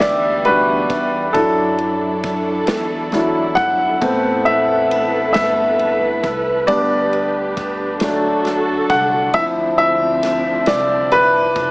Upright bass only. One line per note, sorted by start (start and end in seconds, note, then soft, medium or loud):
0.01 0.86 D2 loud
0.90 1.32 E2 medium
1.34 2.64 F#2 loud
2.68 3.53 E2 medium
3.57 3.99 G1 medium
4.02 5.31 A1 loud
5.35 6.20 G1 medium
6.23 6.65 C2 medium
6.68 7.97 D2 loud
8.01 8.86 D2 medium
8.90 9.31 C2 medium
9.34 10.63 D2 medium
10.67 11.52 C2 medium
11.56 11.71 F1 medium